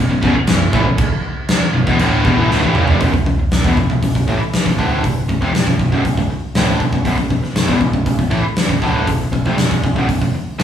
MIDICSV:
0, 0, Header, 1, 7, 480
1, 0, Start_track
1, 0, Key_signature, 2, "minor"
1, 0, Tempo, 505902
1, 936, Time_signature, 4, 2, 24, 8
1, 10088, End_track
2, 0, Start_track
2, 0, Title_t, "Overdriven electric guitar"
2, 0, Program_c, 0, 29
2, 0, Note_on_c, 0, 42, 72
2, 95, Note_off_c, 0, 42, 0
2, 103, Note_on_c, 0, 35, 68
2, 106, Note_on_c, 0, 42, 70
2, 212, Note_off_c, 0, 35, 0
2, 219, Note_off_c, 0, 42, 0
2, 223, Note_on_c, 0, 35, 85
2, 230, Note_on_c, 0, 42, 100
2, 333, Note_off_c, 0, 35, 0
2, 336, Note_off_c, 0, 42, 0
2, 470, Note_on_c, 0, 35, 70
2, 472, Note_on_c, 0, 42, 73
2, 655, Note_off_c, 0, 35, 0
2, 656, Note_off_c, 0, 42, 0
2, 701, Note_on_c, 0, 45, 96
2, 703, Note_on_c, 0, 52, 101
2, 811, Note_off_c, 0, 45, 0
2, 812, Note_off_c, 0, 52, 0
2, 820, Note_on_c, 0, 35, 70
2, 826, Note_on_c, 0, 42, 66
2, 938, Note_off_c, 0, 35, 0
2, 941, Note_off_c, 0, 42, 0
2, 1661, Note_on_c, 0, 35, 65
2, 1664, Note_on_c, 0, 42, 68
2, 1767, Note_off_c, 0, 35, 0
2, 1771, Note_on_c, 0, 40, 83
2, 1779, Note_off_c, 0, 42, 0
2, 1784, Note_on_c, 0, 47, 100
2, 1885, Note_off_c, 0, 40, 0
2, 1892, Note_off_c, 0, 47, 0
2, 1899, Note_on_c, 0, 38, 92
2, 1900, Note_on_c, 0, 45, 91
2, 1905, Note_on_c, 0, 50, 104
2, 2129, Note_off_c, 0, 38, 0
2, 2130, Note_off_c, 0, 45, 0
2, 2132, Note_off_c, 0, 50, 0
2, 2134, Note_on_c, 0, 40, 83
2, 2139, Note_on_c, 0, 47, 101
2, 2247, Note_off_c, 0, 40, 0
2, 2249, Note_off_c, 0, 47, 0
2, 2255, Note_on_c, 0, 45, 87
2, 2266, Note_on_c, 0, 52, 110
2, 2367, Note_off_c, 0, 45, 0
2, 2372, Note_off_c, 0, 52, 0
2, 2374, Note_on_c, 0, 38, 90
2, 2380, Note_on_c, 0, 45, 100
2, 2487, Note_off_c, 0, 38, 0
2, 2490, Note_off_c, 0, 45, 0
2, 2499, Note_on_c, 0, 45, 88
2, 2504, Note_on_c, 0, 52, 99
2, 2609, Note_off_c, 0, 45, 0
2, 2611, Note_off_c, 0, 52, 0
2, 2621, Note_on_c, 0, 42, 83
2, 2630, Note_on_c, 0, 49, 92
2, 2730, Note_off_c, 0, 42, 0
2, 2734, Note_off_c, 0, 49, 0
2, 2745, Note_on_c, 0, 41, 88
2, 2745, Note_on_c, 0, 48, 96
2, 2852, Note_off_c, 0, 41, 0
2, 2852, Note_off_c, 0, 48, 0
2, 2859, Note_on_c, 0, 35, 86
2, 2863, Note_on_c, 0, 42, 100
2, 2968, Note_off_c, 0, 42, 0
2, 2969, Note_off_c, 0, 35, 0
2, 2979, Note_on_c, 0, 35, 58
2, 2979, Note_on_c, 0, 42, 66
2, 3089, Note_off_c, 0, 35, 0
2, 3092, Note_off_c, 0, 42, 0
2, 3100, Note_on_c, 0, 35, 62
2, 3104, Note_on_c, 0, 42, 58
2, 3211, Note_off_c, 0, 35, 0
2, 3218, Note_off_c, 0, 42, 0
2, 3343, Note_on_c, 0, 35, 56
2, 3347, Note_on_c, 0, 42, 65
2, 3456, Note_off_c, 0, 35, 0
2, 3460, Note_off_c, 0, 42, 0
2, 3460, Note_on_c, 0, 40, 85
2, 3470, Note_on_c, 0, 47, 95
2, 3569, Note_off_c, 0, 40, 0
2, 3574, Note_off_c, 0, 47, 0
2, 3590, Note_on_c, 0, 35, 61
2, 3595, Note_on_c, 0, 42, 60
2, 3701, Note_off_c, 0, 35, 0
2, 3704, Note_off_c, 0, 42, 0
2, 3714, Note_on_c, 0, 42, 69
2, 3715, Note_on_c, 0, 35, 60
2, 3818, Note_off_c, 0, 35, 0
2, 3824, Note_off_c, 0, 42, 0
2, 3829, Note_on_c, 0, 35, 57
2, 3834, Note_on_c, 0, 42, 67
2, 3936, Note_off_c, 0, 35, 0
2, 3938, Note_off_c, 0, 42, 0
2, 3947, Note_on_c, 0, 35, 67
2, 3949, Note_on_c, 0, 42, 74
2, 4051, Note_off_c, 0, 35, 0
2, 4055, Note_on_c, 0, 45, 87
2, 4060, Note_off_c, 0, 42, 0
2, 4064, Note_on_c, 0, 52, 96
2, 4167, Note_off_c, 0, 45, 0
2, 4171, Note_off_c, 0, 52, 0
2, 4413, Note_on_c, 0, 35, 63
2, 4419, Note_on_c, 0, 42, 65
2, 4530, Note_off_c, 0, 35, 0
2, 4534, Note_on_c, 0, 38, 81
2, 4536, Note_off_c, 0, 42, 0
2, 4539, Note_on_c, 0, 50, 89
2, 4540, Note_on_c, 0, 45, 85
2, 4767, Note_off_c, 0, 38, 0
2, 4769, Note_off_c, 0, 45, 0
2, 4769, Note_off_c, 0, 50, 0
2, 4778, Note_on_c, 0, 35, 56
2, 4780, Note_on_c, 0, 42, 68
2, 4968, Note_off_c, 0, 35, 0
2, 4969, Note_off_c, 0, 42, 0
2, 5012, Note_on_c, 0, 35, 56
2, 5020, Note_on_c, 0, 42, 69
2, 5127, Note_off_c, 0, 35, 0
2, 5131, Note_on_c, 0, 41, 86
2, 5134, Note_off_c, 0, 42, 0
2, 5138, Note_on_c, 0, 48, 92
2, 5245, Note_off_c, 0, 41, 0
2, 5249, Note_off_c, 0, 48, 0
2, 5254, Note_on_c, 0, 35, 60
2, 5259, Note_on_c, 0, 42, 65
2, 5365, Note_off_c, 0, 35, 0
2, 5365, Note_off_c, 0, 42, 0
2, 5376, Note_on_c, 0, 35, 63
2, 5377, Note_on_c, 0, 42, 65
2, 5495, Note_off_c, 0, 35, 0
2, 5495, Note_off_c, 0, 42, 0
2, 5512, Note_on_c, 0, 35, 59
2, 5518, Note_on_c, 0, 42, 64
2, 5606, Note_off_c, 0, 35, 0
2, 5614, Note_off_c, 0, 42, 0
2, 5617, Note_on_c, 0, 35, 83
2, 5626, Note_on_c, 0, 42, 92
2, 5728, Note_off_c, 0, 35, 0
2, 5733, Note_off_c, 0, 42, 0
2, 5739, Note_on_c, 0, 35, 61
2, 5748, Note_on_c, 0, 42, 70
2, 5856, Note_off_c, 0, 35, 0
2, 5861, Note_off_c, 0, 42, 0
2, 5867, Note_on_c, 0, 35, 65
2, 5876, Note_on_c, 0, 42, 76
2, 5971, Note_off_c, 0, 35, 0
2, 5985, Note_off_c, 0, 42, 0
2, 6230, Note_on_c, 0, 38, 86
2, 6235, Note_on_c, 0, 45, 91
2, 6238, Note_on_c, 0, 50, 96
2, 6455, Note_off_c, 0, 38, 0
2, 6457, Note_off_c, 0, 45, 0
2, 6459, Note_off_c, 0, 50, 0
2, 6463, Note_on_c, 0, 35, 56
2, 6467, Note_on_c, 0, 42, 70
2, 6578, Note_off_c, 0, 35, 0
2, 6580, Note_off_c, 0, 42, 0
2, 6591, Note_on_c, 0, 35, 64
2, 6595, Note_on_c, 0, 42, 71
2, 6683, Note_off_c, 0, 35, 0
2, 6688, Note_off_c, 0, 42, 0
2, 6694, Note_on_c, 0, 35, 85
2, 6699, Note_on_c, 0, 42, 110
2, 6803, Note_off_c, 0, 35, 0
2, 6804, Note_off_c, 0, 42, 0
2, 6814, Note_on_c, 0, 35, 54
2, 6815, Note_on_c, 0, 42, 71
2, 6922, Note_off_c, 0, 35, 0
2, 6924, Note_off_c, 0, 42, 0
2, 6933, Note_on_c, 0, 35, 58
2, 6935, Note_on_c, 0, 42, 65
2, 7043, Note_off_c, 0, 35, 0
2, 7055, Note_off_c, 0, 42, 0
2, 7173, Note_on_c, 0, 42, 70
2, 7175, Note_on_c, 0, 35, 63
2, 7278, Note_off_c, 0, 35, 0
2, 7281, Note_on_c, 0, 40, 90
2, 7286, Note_off_c, 0, 42, 0
2, 7289, Note_on_c, 0, 47, 95
2, 7401, Note_off_c, 0, 40, 0
2, 7402, Note_off_c, 0, 47, 0
2, 7406, Note_on_c, 0, 42, 70
2, 7408, Note_on_c, 0, 35, 58
2, 7519, Note_off_c, 0, 35, 0
2, 7521, Note_off_c, 0, 42, 0
2, 7530, Note_on_c, 0, 35, 66
2, 7532, Note_on_c, 0, 42, 66
2, 7632, Note_off_c, 0, 35, 0
2, 7640, Note_off_c, 0, 42, 0
2, 7643, Note_on_c, 0, 35, 54
2, 7652, Note_on_c, 0, 42, 70
2, 7756, Note_off_c, 0, 35, 0
2, 7757, Note_off_c, 0, 42, 0
2, 7767, Note_on_c, 0, 35, 73
2, 7768, Note_on_c, 0, 42, 78
2, 7872, Note_off_c, 0, 35, 0
2, 7875, Note_off_c, 0, 42, 0
2, 7876, Note_on_c, 0, 45, 92
2, 7879, Note_on_c, 0, 52, 102
2, 7998, Note_off_c, 0, 45, 0
2, 8000, Note_off_c, 0, 52, 0
2, 8250, Note_on_c, 0, 35, 69
2, 8257, Note_on_c, 0, 42, 70
2, 8366, Note_off_c, 0, 35, 0
2, 8368, Note_off_c, 0, 42, 0
2, 8369, Note_on_c, 0, 38, 86
2, 8372, Note_on_c, 0, 45, 84
2, 8378, Note_on_c, 0, 50, 93
2, 8595, Note_off_c, 0, 38, 0
2, 8599, Note_on_c, 0, 35, 62
2, 8603, Note_off_c, 0, 45, 0
2, 8606, Note_on_c, 0, 42, 64
2, 8609, Note_off_c, 0, 50, 0
2, 8798, Note_off_c, 0, 35, 0
2, 8802, Note_off_c, 0, 42, 0
2, 8845, Note_on_c, 0, 35, 55
2, 8848, Note_on_c, 0, 42, 62
2, 8970, Note_off_c, 0, 35, 0
2, 8971, Note_off_c, 0, 42, 0
2, 8975, Note_on_c, 0, 41, 85
2, 8983, Note_on_c, 0, 48, 90
2, 9087, Note_off_c, 0, 41, 0
2, 9090, Note_on_c, 0, 35, 55
2, 9091, Note_off_c, 0, 48, 0
2, 9095, Note_on_c, 0, 42, 66
2, 9200, Note_off_c, 0, 35, 0
2, 9205, Note_off_c, 0, 42, 0
2, 9211, Note_on_c, 0, 35, 63
2, 9216, Note_on_c, 0, 42, 72
2, 9333, Note_off_c, 0, 35, 0
2, 9335, Note_off_c, 0, 42, 0
2, 9344, Note_on_c, 0, 35, 57
2, 9347, Note_on_c, 0, 42, 66
2, 9442, Note_off_c, 0, 35, 0
2, 9447, Note_off_c, 0, 42, 0
2, 9453, Note_on_c, 0, 35, 78
2, 9458, Note_on_c, 0, 42, 93
2, 9566, Note_off_c, 0, 35, 0
2, 9566, Note_off_c, 0, 42, 0
2, 9578, Note_on_c, 0, 42, 67
2, 9579, Note_on_c, 0, 35, 61
2, 9685, Note_off_c, 0, 35, 0
2, 9692, Note_off_c, 0, 42, 0
2, 9696, Note_on_c, 0, 35, 61
2, 9703, Note_on_c, 0, 42, 71
2, 9810, Note_off_c, 0, 35, 0
2, 9818, Note_off_c, 0, 42, 0
2, 10046, Note_on_c, 0, 38, 95
2, 10048, Note_on_c, 0, 45, 93
2, 10054, Note_on_c, 0, 50, 89
2, 10088, Note_off_c, 0, 38, 0
2, 10088, Note_off_c, 0, 45, 0
2, 10088, Note_off_c, 0, 50, 0
2, 10088, End_track
3, 0, Start_track
3, 0, Title_t, "Picked electric bass"
3, 0, Program_c, 1, 34
3, 88, Note_on_c, 1, 23, 83
3, 204, Note_off_c, 1, 23, 0
3, 215, Note_on_c, 1, 23, 99
3, 328, Note_off_c, 1, 23, 0
3, 460, Note_on_c, 1, 23, 78
3, 681, Note_off_c, 1, 23, 0
3, 692, Note_on_c, 1, 33, 101
3, 805, Note_off_c, 1, 33, 0
3, 816, Note_on_c, 1, 23, 85
3, 925, Note_off_c, 1, 23, 0
3, 1651, Note_on_c, 1, 23, 81
3, 1764, Note_off_c, 1, 23, 0
3, 1775, Note_on_c, 1, 28, 93
3, 1886, Note_off_c, 1, 28, 0
3, 1901, Note_on_c, 1, 26, 88
3, 2121, Note_off_c, 1, 26, 0
3, 2135, Note_on_c, 1, 28, 93
3, 2246, Note_off_c, 1, 28, 0
3, 2266, Note_on_c, 1, 33, 93
3, 2372, Note_off_c, 1, 33, 0
3, 2387, Note_on_c, 1, 26, 94
3, 2492, Note_off_c, 1, 26, 0
3, 2512, Note_on_c, 1, 33, 88
3, 2615, Note_off_c, 1, 33, 0
3, 2623, Note_on_c, 1, 30, 90
3, 2730, Note_off_c, 1, 30, 0
3, 2742, Note_on_c, 1, 29, 98
3, 2847, Note_off_c, 1, 29, 0
3, 2852, Note_on_c, 1, 23, 83
3, 2964, Note_off_c, 1, 23, 0
3, 2975, Note_on_c, 1, 23, 64
3, 3086, Note_off_c, 1, 23, 0
3, 3099, Note_on_c, 1, 23, 72
3, 3208, Note_off_c, 1, 23, 0
3, 3338, Note_on_c, 1, 23, 73
3, 3447, Note_off_c, 1, 23, 0
3, 3457, Note_on_c, 1, 28, 88
3, 3567, Note_off_c, 1, 28, 0
3, 3575, Note_on_c, 1, 23, 74
3, 3686, Note_off_c, 1, 23, 0
3, 3701, Note_on_c, 1, 23, 80
3, 3809, Note_off_c, 1, 23, 0
3, 3822, Note_on_c, 1, 23, 68
3, 3930, Note_off_c, 1, 23, 0
3, 3938, Note_on_c, 1, 23, 76
3, 4047, Note_off_c, 1, 23, 0
3, 4059, Note_on_c, 1, 33, 85
3, 4168, Note_off_c, 1, 33, 0
3, 4423, Note_on_c, 1, 23, 71
3, 4530, Note_off_c, 1, 23, 0
3, 4541, Note_on_c, 1, 26, 95
3, 4761, Note_off_c, 1, 26, 0
3, 4784, Note_on_c, 1, 23, 72
3, 5002, Note_off_c, 1, 23, 0
3, 5021, Note_on_c, 1, 23, 76
3, 5129, Note_off_c, 1, 23, 0
3, 5141, Note_on_c, 1, 29, 90
3, 5249, Note_off_c, 1, 29, 0
3, 5262, Note_on_c, 1, 23, 79
3, 5370, Note_off_c, 1, 23, 0
3, 5379, Note_on_c, 1, 23, 77
3, 5488, Note_off_c, 1, 23, 0
3, 5496, Note_on_c, 1, 23, 75
3, 5606, Note_off_c, 1, 23, 0
3, 5619, Note_on_c, 1, 23, 92
3, 5728, Note_off_c, 1, 23, 0
3, 5740, Note_on_c, 1, 23, 73
3, 5849, Note_off_c, 1, 23, 0
3, 5858, Note_on_c, 1, 23, 79
3, 5968, Note_off_c, 1, 23, 0
3, 6221, Note_on_c, 1, 26, 88
3, 6441, Note_off_c, 1, 26, 0
3, 6455, Note_on_c, 1, 23, 79
3, 6566, Note_off_c, 1, 23, 0
3, 6572, Note_on_c, 1, 23, 82
3, 6685, Note_off_c, 1, 23, 0
3, 6690, Note_on_c, 1, 23, 89
3, 6804, Note_off_c, 1, 23, 0
3, 6811, Note_on_c, 1, 23, 69
3, 6921, Note_off_c, 1, 23, 0
3, 6927, Note_on_c, 1, 23, 76
3, 7042, Note_off_c, 1, 23, 0
3, 7174, Note_on_c, 1, 23, 78
3, 7286, Note_off_c, 1, 23, 0
3, 7290, Note_on_c, 1, 28, 87
3, 7404, Note_off_c, 1, 28, 0
3, 7410, Note_on_c, 1, 23, 82
3, 7521, Note_off_c, 1, 23, 0
3, 7527, Note_on_c, 1, 23, 74
3, 7642, Note_off_c, 1, 23, 0
3, 7649, Note_on_c, 1, 23, 73
3, 7760, Note_off_c, 1, 23, 0
3, 7766, Note_on_c, 1, 23, 71
3, 7881, Note_off_c, 1, 23, 0
3, 7888, Note_on_c, 1, 33, 93
3, 8003, Note_off_c, 1, 33, 0
3, 8248, Note_on_c, 1, 23, 74
3, 8362, Note_off_c, 1, 23, 0
3, 8367, Note_on_c, 1, 26, 94
3, 8594, Note_off_c, 1, 26, 0
3, 8609, Note_on_c, 1, 23, 75
3, 8835, Note_off_c, 1, 23, 0
3, 8854, Note_on_c, 1, 23, 72
3, 8966, Note_off_c, 1, 23, 0
3, 8972, Note_on_c, 1, 29, 89
3, 9084, Note_off_c, 1, 29, 0
3, 9101, Note_on_c, 1, 23, 76
3, 9210, Note_off_c, 1, 23, 0
3, 9214, Note_on_c, 1, 23, 80
3, 9326, Note_off_c, 1, 23, 0
3, 9332, Note_on_c, 1, 23, 76
3, 9445, Note_off_c, 1, 23, 0
3, 9452, Note_on_c, 1, 23, 96
3, 9565, Note_off_c, 1, 23, 0
3, 9569, Note_on_c, 1, 23, 74
3, 9683, Note_off_c, 1, 23, 0
3, 9691, Note_on_c, 1, 23, 72
3, 9804, Note_off_c, 1, 23, 0
3, 10088, End_track
4, 0, Start_track
4, 0, Title_t, "Muted distorted electric guitar strokes"
4, 335, Note_on_c, 9, 29, 65
4, 429, Note_off_c, 9, 29, 0
4, 931, Note_on_c, 9, 29, 57
4, 1026, Note_off_c, 9, 29, 0
4, 10088, End_track
5, 0, Start_track
5, 0, Title_t, "Muted overdriven electric guitar strokes"
5, 348, Note_on_c, 9, 29, 64
5, 443, Note_off_c, 9, 29, 0
5, 947, Note_on_c, 9, 29, 60
5, 1042, Note_off_c, 9, 29, 0
5, 3222, Note_on_c, 9, 29, 54
5, 3317, Note_off_c, 9, 29, 0
5, 4182, Note_on_c, 9, 29, 60
5, 4277, Note_off_c, 9, 29, 0
5, 5983, Note_on_c, 9, 29, 60
5, 6078, Note_off_c, 9, 29, 0
5, 7055, Note_on_c, 9, 29, 58
5, 7150, Note_off_c, 9, 29, 0
5, 8005, Note_on_c, 9, 29, 65
5, 8100, Note_off_c, 9, 29, 0
5, 9821, Note_on_c, 9, 29, 54
5, 9916, Note_off_c, 9, 29, 0
5, 10088, End_track
6, 0, Start_track
6, 0, Title_t, "Muted picked electric bass strokes"
6, 336, Note_on_c, 9, 29, 39
6, 431, Note_off_c, 9, 29, 0
6, 930, Note_on_c, 9, 29, 41
6, 1025, Note_off_c, 9, 29, 0
6, 3223, Note_on_c, 9, 29, 41
6, 3318, Note_off_c, 9, 29, 0
6, 4180, Note_on_c, 9, 29, 38
6, 4275, Note_off_c, 9, 29, 0
6, 5980, Note_on_c, 9, 29, 38
6, 6075, Note_off_c, 9, 29, 0
6, 7051, Note_on_c, 9, 29, 39
6, 7146, Note_off_c, 9, 29, 0
6, 8011, Note_on_c, 9, 29, 37
6, 8106, Note_off_c, 9, 29, 0
6, 9826, Note_on_c, 9, 29, 39
6, 9921, Note_off_c, 9, 29, 0
6, 10088, End_track
7, 0, Start_track
7, 0, Title_t, "Drums"
7, 215, Note_on_c, 9, 36, 102
7, 310, Note_off_c, 9, 36, 0
7, 448, Note_on_c, 9, 49, 65
7, 452, Note_on_c, 9, 38, 109
7, 543, Note_off_c, 9, 49, 0
7, 547, Note_off_c, 9, 38, 0
7, 694, Note_on_c, 9, 36, 108
7, 788, Note_off_c, 9, 36, 0
7, 930, Note_on_c, 9, 49, 66
7, 934, Note_on_c, 9, 36, 109
7, 1025, Note_off_c, 9, 49, 0
7, 1028, Note_off_c, 9, 36, 0
7, 1409, Note_on_c, 9, 49, 61
7, 1413, Note_on_c, 9, 38, 116
7, 1504, Note_off_c, 9, 49, 0
7, 1508, Note_off_c, 9, 38, 0
7, 1773, Note_on_c, 9, 36, 89
7, 1868, Note_off_c, 9, 36, 0
7, 1891, Note_on_c, 9, 49, 60
7, 1986, Note_off_c, 9, 49, 0
7, 2133, Note_on_c, 9, 36, 97
7, 2228, Note_off_c, 9, 36, 0
7, 2381, Note_on_c, 9, 38, 61
7, 2476, Note_off_c, 9, 38, 0
7, 2491, Note_on_c, 9, 48, 60
7, 2586, Note_off_c, 9, 48, 0
7, 2609, Note_on_c, 9, 45, 90
7, 2704, Note_off_c, 9, 45, 0
7, 2729, Note_on_c, 9, 43, 92
7, 2824, Note_off_c, 9, 43, 0
7, 2851, Note_on_c, 9, 46, 55
7, 2853, Note_on_c, 9, 36, 104
7, 2946, Note_off_c, 9, 46, 0
7, 2948, Note_off_c, 9, 36, 0
7, 2975, Note_on_c, 9, 36, 81
7, 3070, Note_off_c, 9, 36, 0
7, 3096, Note_on_c, 9, 36, 72
7, 3191, Note_off_c, 9, 36, 0
7, 3334, Note_on_c, 9, 46, 50
7, 3338, Note_on_c, 9, 38, 102
7, 3429, Note_off_c, 9, 46, 0
7, 3433, Note_off_c, 9, 38, 0
7, 3457, Note_on_c, 9, 36, 94
7, 3552, Note_off_c, 9, 36, 0
7, 3578, Note_on_c, 9, 36, 85
7, 3673, Note_off_c, 9, 36, 0
7, 3699, Note_on_c, 9, 36, 71
7, 3794, Note_off_c, 9, 36, 0
7, 3819, Note_on_c, 9, 36, 84
7, 3820, Note_on_c, 9, 46, 57
7, 3914, Note_off_c, 9, 36, 0
7, 3915, Note_off_c, 9, 46, 0
7, 3939, Note_on_c, 9, 36, 80
7, 4034, Note_off_c, 9, 36, 0
7, 4059, Note_on_c, 9, 36, 72
7, 4154, Note_off_c, 9, 36, 0
7, 4300, Note_on_c, 9, 46, 57
7, 4304, Note_on_c, 9, 38, 103
7, 4395, Note_off_c, 9, 46, 0
7, 4399, Note_off_c, 9, 38, 0
7, 4421, Note_on_c, 9, 36, 85
7, 4516, Note_off_c, 9, 36, 0
7, 4542, Note_on_c, 9, 36, 76
7, 4637, Note_off_c, 9, 36, 0
7, 4783, Note_on_c, 9, 36, 88
7, 4787, Note_on_c, 9, 46, 54
7, 4877, Note_off_c, 9, 36, 0
7, 4881, Note_off_c, 9, 46, 0
7, 5021, Note_on_c, 9, 36, 83
7, 5116, Note_off_c, 9, 36, 0
7, 5142, Note_on_c, 9, 36, 71
7, 5236, Note_off_c, 9, 36, 0
7, 5262, Note_on_c, 9, 46, 54
7, 5266, Note_on_c, 9, 38, 101
7, 5357, Note_off_c, 9, 46, 0
7, 5360, Note_off_c, 9, 38, 0
7, 5378, Note_on_c, 9, 36, 79
7, 5473, Note_off_c, 9, 36, 0
7, 5498, Note_on_c, 9, 36, 80
7, 5593, Note_off_c, 9, 36, 0
7, 5620, Note_on_c, 9, 36, 72
7, 5715, Note_off_c, 9, 36, 0
7, 5740, Note_on_c, 9, 36, 88
7, 5744, Note_on_c, 9, 46, 55
7, 5835, Note_off_c, 9, 36, 0
7, 5839, Note_off_c, 9, 46, 0
7, 5858, Note_on_c, 9, 36, 78
7, 5953, Note_off_c, 9, 36, 0
7, 6213, Note_on_c, 9, 46, 51
7, 6217, Note_on_c, 9, 38, 113
7, 6308, Note_off_c, 9, 46, 0
7, 6312, Note_off_c, 9, 38, 0
7, 6453, Note_on_c, 9, 36, 84
7, 6548, Note_off_c, 9, 36, 0
7, 6571, Note_on_c, 9, 36, 85
7, 6666, Note_off_c, 9, 36, 0
7, 6690, Note_on_c, 9, 36, 91
7, 6693, Note_on_c, 9, 46, 52
7, 6785, Note_off_c, 9, 36, 0
7, 6788, Note_off_c, 9, 46, 0
7, 6809, Note_on_c, 9, 36, 85
7, 6904, Note_off_c, 9, 36, 0
7, 6931, Note_on_c, 9, 36, 79
7, 7025, Note_off_c, 9, 36, 0
7, 7054, Note_on_c, 9, 38, 28
7, 7149, Note_off_c, 9, 38, 0
7, 7168, Note_on_c, 9, 46, 52
7, 7172, Note_on_c, 9, 38, 107
7, 7263, Note_off_c, 9, 46, 0
7, 7267, Note_off_c, 9, 38, 0
7, 7289, Note_on_c, 9, 36, 85
7, 7384, Note_off_c, 9, 36, 0
7, 7408, Note_on_c, 9, 36, 84
7, 7503, Note_off_c, 9, 36, 0
7, 7528, Note_on_c, 9, 36, 76
7, 7623, Note_off_c, 9, 36, 0
7, 7646, Note_on_c, 9, 46, 54
7, 7648, Note_on_c, 9, 36, 94
7, 7741, Note_off_c, 9, 46, 0
7, 7743, Note_off_c, 9, 36, 0
7, 7768, Note_on_c, 9, 36, 78
7, 7863, Note_off_c, 9, 36, 0
7, 7887, Note_on_c, 9, 36, 80
7, 7982, Note_off_c, 9, 36, 0
7, 8125, Note_on_c, 9, 46, 59
7, 8129, Note_on_c, 9, 38, 109
7, 8220, Note_off_c, 9, 46, 0
7, 8224, Note_off_c, 9, 38, 0
7, 8247, Note_on_c, 9, 36, 80
7, 8342, Note_off_c, 9, 36, 0
7, 8367, Note_on_c, 9, 36, 76
7, 8462, Note_off_c, 9, 36, 0
7, 8610, Note_on_c, 9, 36, 89
7, 8610, Note_on_c, 9, 46, 55
7, 8705, Note_off_c, 9, 36, 0
7, 8705, Note_off_c, 9, 46, 0
7, 8851, Note_on_c, 9, 36, 83
7, 8946, Note_off_c, 9, 36, 0
7, 8973, Note_on_c, 9, 36, 71
7, 9068, Note_off_c, 9, 36, 0
7, 9087, Note_on_c, 9, 46, 52
7, 9091, Note_on_c, 9, 38, 110
7, 9182, Note_off_c, 9, 46, 0
7, 9186, Note_off_c, 9, 38, 0
7, 9213, Note_on_c, 9, 36, 84
7, 9308, Note_off_c, 9, 36, 0
7, 9332, Note_on_c, 9, 36, 85
7, 9427, Note_off_c, 9, 36, 0
7, 9451, Note_on_c, 9, 36, 73
7, 9545, Note_off_c, 9, 36, 0
7, 9572, Note_on_c, 9, 36, 86
7, 9575, Note_on_c, 9, 46, 57
7, 9667, Note_off_c, 9, 36, 0
7, 9670, Note_off_c, 9, 46, 0
7, 9692, Note_on_c, 9, 36, 74
7, 9787, Note_off_c, 9, 36, 0
7, 10051, Note_on_c, 9, 46, 53
7, 10055, Note_on_c, 9, 38, 104
7, 10088, Note_off_c, 9, 38, 0
7, 10088, Note_off_c, 9, 46, 0
7, 10088, End_track
0, 0, End_of_file